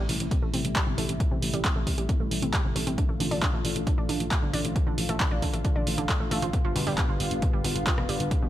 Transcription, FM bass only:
0.09 A1
0.20 A1
0.42 A1
0.54 A1
0.65 A1
0.87 G1
0.98 A1
1.09 A1
1.31 A1
1.42 A1
1.54 A1
1.76 A1
1.87 A1
1.98 A1
2.20 A1
2.31 A1
2.42 A1
2.65 G1
2.76 A1
2.87 A1
3.09 A1
3.20 A1
3.31 A1
3.53 A1
3.65 A1
3.76 A1
3.98 A1
4.09 A1
4.20 A1
4.42 G1
4.54 A1
4.65 A1
4.87 A1
4.98 A1
5.09 A1
5.31 A1
5.42 A1
5.54 A1
5.76 A1
5.87 A1
5.98 A1
6.20 A1
6.31 A1
6.42 A1
6.65 G1
6.76 G1
6.87 G1
7.09 G1
7.20 G1
7.31 G1
7.53 G1
7.64 G1
7.75 G1
7.98 F1
8.09 G1
8.20 G1
8.42 G1

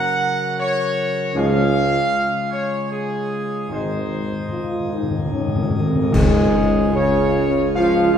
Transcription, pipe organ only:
Already playing: C#3 F#3 F#4 A#4
1.34 C#3 G#3 F4 G#4
3.69 D#3 D#4
6.13 C#3 G#3 F4 C#5

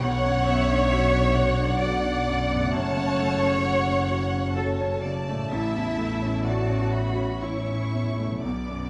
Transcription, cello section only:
0.02 C#5
1.81 D5
2.73 C#5
4.57 A4
5.51 E4
6.45 F#4
7.43 E4
8.44 B3

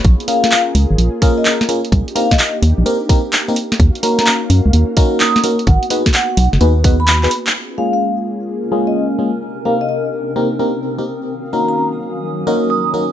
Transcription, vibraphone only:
0.28 F5
0.43 F5
1.38 D#5
2.16 F5
2.31 D#5
2.39 D#5
4.03 A#5
4.19 A#5
5.20 D#6
5.67 F#5
6.14 F#5
6.30 F#5
7.00 B5
7.78 F5
7.93 F5
8.87 D#5
9.65 F5
9.81 D#5
9.89 D#5
11.53 A#5
11.68 A#5
12.70 D#6

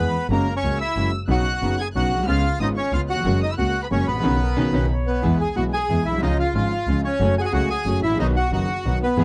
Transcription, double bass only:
Already playing: E2
0.30 F#1
0.64 C#2
0.97 F#1
1.29 B1
1.63 F#1
1.95 B1
2.11 B1
2.27 C#2
2.60 G#1
2.93 C#2
3.26 F#1
3.59 C#2
3.92 F#1
4.08 A1
4.25 B1
4.57 B1
4.74 B1
5.24 E2
5.56 B1
5.90 E2
6.06 B1
6.23 C#2
6.55 G#1
6.88 C#2
7.21 F#1
7.54 C#2
7.86 F#1
8.03 A1
8.20 B1
8.52 F#1
8.86 B1
9.17 E2

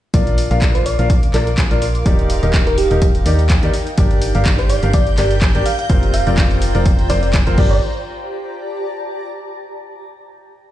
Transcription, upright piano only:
0.14 D4 F4 A#4 D5
0.51 D4 F4 A#4 F5
0.99 D4 F4 A#4 F5
1.34 D4 F4 A#4 D5
1.71 D4 F4 A#4 D5
2.06 D#4 G4 A#4 D5
2.43 D#4 G4 A#4 D#5
2.91 D#4 G4 A#4 D#5
3.26 D#4 G4 A#4 D5
3.63 D#4 G4 A#4 D5
3.98 D4 G4 A#4 D5
4.35 D4 G4 A#4 F5
4.83 D4 G4 A#4 F5
5.18 D4 G4 A#4 D5
5.55 D4 G4 A#4 D5
5.90 C4 F4 A#4 C5
6.27 C4 F4 A#4 D5
6.75 C4 F4 A#4 D5
7.10 C4 F4 A#4 C5
7.47 C4 F4 A#4 C5
7.58 D4 G4 A#4 D5

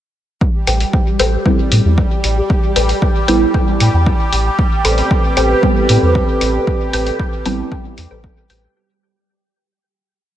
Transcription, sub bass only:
0.67 A1
1.19 A1
1.72 A2
1.85 E2
2.24 A1
2.76 A1
3.28 A1
3.80 A2
3.93 E2
4.33 A1
4.85 A1
5.37 A1
5.89 A2
6.02 E2
6.41 A1
6.93 A1
7.46 A1
7.98 E2
8.11 A1
8.50 A1

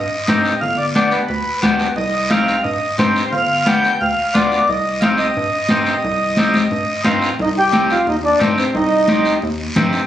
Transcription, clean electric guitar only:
0.28 C4 D#4 G4
0.95 B3 D4 G4
1.63 B3 D4 G4
2.31 C4 D#4 G4
2.99 C4 D#4 G4
3.66 B3 D4 G4
4.34 B3 D4 F4
5.03 C4 D#4 G4
5.70 C4 D#4 G4
6.38 C4 D#4 G4
7.04 C4 D#4 F4
7.73 C4 D#4 G4
8.39 C4 D#4 G4
9.09 C4 D#4 G4
9.76 C4 D#4 G4

